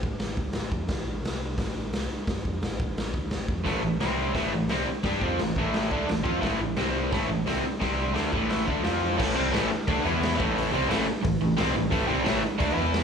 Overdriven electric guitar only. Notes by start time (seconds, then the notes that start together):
3.65 A2 E3 A3
3.82 A2 E3
4.00 C3 G3 C4
4.33 A2 E3 A3
4.53 A2 E3
4.70 C3 G3 C4
4.88 muted overdriven electric guitar stroke
5.04 G3 D4 G4
5.22 F3 C4 F4
5.40 A2 E3
5.57 A2 E3 A3
5.92 D3 A3 D4
6.07 A2 E3
6.23 F3 C4 F4
6.40 A2 E3 A3
6.60 A2 E3
6.77 C3 G3 C4
7.11 A2 E3 A3
7.28 A2 E3
7.46 C3 G3 C4
7.65 muted overdriven electric guitar stroke
7.80 C3 G3 C4
8.14 D3 A3 D4
8.32 A2 E3 A3
8.67 D3 A3 D4
8.84 F3 C4 F4
9.17 A2 E3 A3
9.35 C3 G3 C4
9.51 A2 E3 A3
9.72 muted overdriven electric guitar stroke
9.88 D3 A3 D4
10.05 E3 B3 E4
10.36 A2 E3 A3
10.72 C3 G3 C4
10.89 A2 E3 A3
11.23 A2 E3
11.42 A2 E3
11.57 C3 G3 C4
11.75 A2 E3
11.90 A2 E3 A3
12.06 C3 G3 C4
12.23 A2 E3 A3
12.41 muted overdriven electric guitar stroke
12.59 D3 A3 D4
12.74 E3 B3 E4